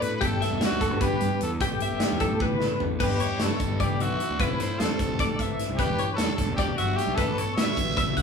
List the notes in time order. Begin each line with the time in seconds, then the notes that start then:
Already playing: A2 A3 F#4 A4
0.02 A2 B4, closed hi-hat
0.09 D4
0.16 G2 B4
0.20 G1 G3 B3 E4 G4 A4, kick, closed hi-hat
0.40 B3 E5, snare, closed hi-hat
0.51 E1
0.60 G3, snare, closed hi-hat
0.64 F#4
0.71 D2
0.81 B3 A4, kick, snare, closed hi-hat
0.91 G2
1.01 G4 B4, kick, closed hi-hat
1.20 G2, closed hi-hat
1.40 E2 G2 A4, closed hi-hat
1.60 A1 A2 D4 G4, kick, closed hi-hat
1.70 E4
1.80 B3 E5, closed hi-hat
1.91 G1
2.00 A3, snare, closed hi-hat
2.12 E2
2.20 B3 A4, kick, closed hi-hat
2.32 A2
2.40 D4 B4, kick, high tom
2.54 E4
2.60 A2 A3, snare
2.80 A1 B3, floor tom
3.00 G1 G2 G4 B4, kick, crash
3.05 E4
3.20 B3 C#5, closed hi-hat
3.40 G2 E4 A4, snare, closed hi-hat
3.60 G1 B3, kick, closed hi-hat
3.80 C#3 G4 D5, kick, closed hi-hat
4.00 B1 D3 F#4 E5, closed hi-hat
4.20 E3, closed hi-hat
4.30 D2
4.39 F1 F3 A3 C4 E4 B4, kick, closed hi-hat
4.60 C4 C5, snare, closed hi-hat
4.80 F2 E4 A4, snare, closed hi-hat
4.99 F1 C4, kick, snare, closed hi-hat
5.19 A3 D5, kick, snare, closed hi-hat
5.39 A1 C4 E5, kick, closed hi-hat
5.59 E4, snare, closed hi-hat
5.69 C2
5.76 E1 G4 B4, kick, closed hi-hat
5.81 E3 E4
5.98 D4 C#5, closed hi-hat
6.13 A4 B4
6.18 E2 D4, snare, closed hi-hat
6.32 E4 A4
6.38 E1 D4, kick, snare, closed hi-hat
6.56 E3 G4 D5, kick, closed hi-hat
6.76 G1 F#3 F#4 E5, closed hi-hat
6.96 G3 G4, snare, closed hi-hat
7.07 B1
7.15 A1 A2 A4 B4, kick, closed hi-hat
7.19 G4
7.38 B3 C#5, closed hi-hat
7.57 A2 F#4 E5, snare, closed hi-hat
7.77 A1 B3, kick, closed hi-hat
7.97 C#3 E5, kick, snare, closed hi-hat
8.17 C#2 B2 F#5, kick, closed hi-hat